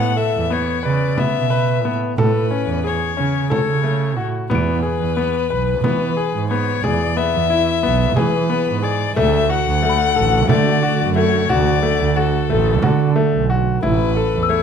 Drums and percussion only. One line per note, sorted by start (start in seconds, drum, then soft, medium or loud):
1.18 frame drum medium
2.18 frame drum medium
2.52 frame drum soft
3.51 frame drum medium
3.86 frame drum soft
4.51 frame drum medium
5.18 frame drum soft
5.52 frame drum soft
5.84 frame drum medium
6.51 frame drum soft
6.84 frame drum medium
7.50 frame drum soft
7.84 frame drum soft
8.17 frame drum medium
8.83 frame drum soft
9.17 frame drum medium
10.17 frame drum soft
10.49 frame drum medium
11.50 frame drum medium
11.84 frame drum soft
12.82 frame drum medium
13.83 frame drum medium